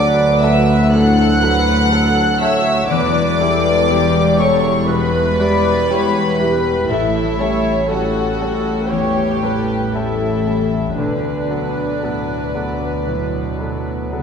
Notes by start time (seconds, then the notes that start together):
Already playing: D2 D3 F#3 D4 F#4 A4 B4 D5 D6
0.26 A4
0.42 F#3 F#4 A4 E5 E6
0.59 F#4
0.91 A2 D4 A4 F#5 F#6
1.26 F#3
1.42 F#3 F#4 A4 B4
1.58 A4
1.91 F#3 F#4 A4
2.25 A4
2.40 F#3 F#4 A4 C#5 E5 E6
2.58 F#4
2.89 E1 E2 E3 B4 D5 D6
3.23 E4
3.40 G3 E4 G4 A4
3.56 B4
3.89 G3 E4 G4 E5
4.38 G3 E4 G4 A4 C#5 C#6
4.55 E4
4.88 B2 G3 B4 B5
5.23 E4
5.40 G3 E4 G4 D5
5.90 G3 E4 G4 C#5 E5
6.39 G3 E4 G4 B4
6.57 E4
6.89 A1 A2 E4 A4 E5
7.24 G3
7.40 G3 C#4 A4 C#5
7.57 A4
7.89 G3 C#4 F#4 A4 F#5
8.24 A4
8.41 G3 C#4 A4
8.57 C#4
8.90 E2 E3 G4 C#5 G5
9.25 G3
9.42 G3 C#4 A4 B4
9.59 A4
9.93 G3 C#4 E4 G4 A4 E5
10.28 A4
10.47 G3 C#4 A4
10.62 C#4
10.97 D2 B2 D3 D4 B4 D5
11.33 B3
11.50 F#3 B3 A4
11.68 F#4
12.02 A2 F#3 B3 A4 D5
12.38 F#4
12.55 F#3 B3 A4
12.73 B4
13.07 A2 B2 F#3
13.43 A3
13.59 F#3 B3 A4
13.78 F#4
14.12 C#3 F#3 B3 A4 D5